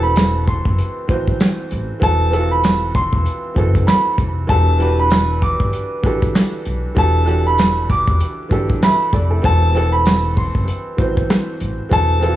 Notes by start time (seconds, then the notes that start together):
Already playing: E1 E3 C4 F#4 A4
0.03 B5
0.16 snare, clap, closed hi-hat, tambourine
0.47 C6, kick, closed hi-hat
0.65 F#1, kick
0.78 closed hi-hat
1.08 A1 E3 C4 F#4 C5, kick, closed hi-hat
1.28 kick
1.40 snare, clap, closed hi-hat, tambourine
1.71 A1, closed hi-hat
2.00 E1 E3 C4 F#4 A4 A5, kick, closed hi-hat
2.30 E3 C4 F4 A4, closed hi-hat
2.39 F#4
2.51 B5
2.63 snare, clap, closed hi-hat, tambourine
2.95 C6, kick, closed hi-hat
3.13 E1, kick
3.26 closed hi-hat
3.54 F#1 E3 C4 F#4 A4, kick, closed hi-hat
3.75 kick, closed hi-hat
3.87 B5, snare, clap, closed hi-hat, tambourine
4.18 F1, kick, closed hi-hat
4.47 E1 E3 D4 F#4 G4 A4 A5, kick, closed hi-hat
4.78 E3 D4 F#4 G4 B4, closed hi-hat
4.99 B5
5.11 snare, clap, closed hi-hat, tambourine
5.42 D6, kick, closed hi-hat
5.60 G1, kick
5.73 closed hi-hat
6.03 A1 E3 D4 F#4 G4 A4, kick, closed hi-hat
6.22 kick, closed hi-hat
6.35 snare, clap, closed hi-hat, tambourine
6.65 B1, closed hi-hat
6.95 E1 E3 D4 F#4 G4 A4 A5, kick, closed hi-hat
7.24 E3 D4 F#4 G4 A4, closed hi-hat
7.47 B5
7.58 snare, clap, closed hi-hat, tambourine
7.90 D6, kick, closed hi-hat
8.07 E1, kick
8.20 closed hi-hat
8.49 G1 E3 D4 F#4 G4 A4, kick, closed hi-hat
8.70 kick
8.82 B4 E5 B5, snare, clap, closed hi-hat, tambourine
9.13 F1 A4 D5, kick, closed hi-hat
9.31 E4 A4
9.42 E1 E3 C4 F#4 A4 A5, kick, closed hi-hat
9.73 E3 C4 F#4 A4, closed hi-hat
9.92 B5
10.06 snare, clap, closed hi-hat, tambourine
10.37 C6, kick, open hi-hat
10.55 F#1, kick
10.68 closed hi-hat
10.97 A1 E3 C4 F#4 C5, kick, closed hi-hat
11.17 kick
11.30 snare, clap, closed hi-hat, tambourine
11.60 A1, closed hi-hat
11.89 E1 E3 C4 F#4 A4 A5, kick, closed hi-hat
12.19 E3 C4 F4 A4, closed hi-hat
12.28 F#4